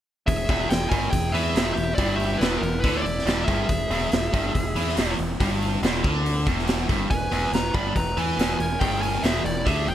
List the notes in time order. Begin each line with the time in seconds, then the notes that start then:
0.27 E1 E2 G#4 E5, kick, open hi-hat
0.49 E1 E2, kick, open hi-hat
0.68 E1 E2 G#4 G5, open hi-hat
0.72 snare
0.88 G1 G2 A#4 G#5, kick
0.92 open hi-hat
1.10 E1 E2 G#4 G5, kick, open hi-hat
1.30 G#4 E5
1.34 E2 E3, open hi-hat
1.55 E1 E2, snare, open hi-hat
1.73 E1 G4 E5
1.77 E2, open hi-hat
1.94 E4 D5
1.98 G1 G2, kick, open hi-hat
2.16 G4 E5, open hi-hat
2.38 E1 E2 E4 B4, open hi-hat
2.43 snare
2.58 E1 B3 A#4
2.63 E2, open hi-hat
2.81 D2 E4 B4, kick, open hi-hat
2.85 D3
2.97 E4 C#5
3.02 E1 E4 D5, open hi-hat
3.06 E2
3.18 snare
3.25 E1 E2, snare, open hi-hat
3.45 G1 G2 G#4 E5, kick, open hi-hat
3.69 E1 E2, kick, open hi-hat
3.89 E1 E2, open hi-hat
4.11 E1 E2, snare, open hi-hat
4.33 G1 G2, kick, open hi-hat
4.55 E1 E2, kick, open hi-hat
4.75 E2 E3, open hi-hat
4.88 snare
4.96 E1 E2, snare, open hi-hat
5.18 E1 E2, open hi-hat
5.40 G1 G2, kick, open hi-hat
5.62 open hi-hat
5.82 E1 E2, snare, open hi-hat
6.03 D2 D3, kick, open hi-hat
6.26 open hi-hat
6.46 E1 E2, kick, open hi-hat
6.59 snare
6.67 snare, open hi-hat
6.89 G1 G2, kick, open hi-hat
7.10 E1 E2 B4 G#5, kick, open hi-hat
7.31 E1 E2, open hi-hat
7.51 E1 E2 B4 A#5, snare, open hi-hat
7.74 G1 G2 D5 B5, kick, open hi-hat
7.95 E1 E2 B4 A#5, kick, open hi-hat
8.17 E2 E3 B4 G#5, open hi-hat
8.37 E1 E2, snare, open hi-hat
8.59 E1 E2 A#4 G#5, open hi-hat
8.80 G1 G2 G#4 G5, kick, open hi-hat
9.02 A#4 G#5, open hi-hat
9.22 E1 E2 G#4 E5, snare, open hi-hat
9.44 E1 E2 E4 D5, open hi-hat
9.65 D2 D3 G#4 E5, kick, open hi-hat
9.87 E1 E2 G#4 G5, open hi-hat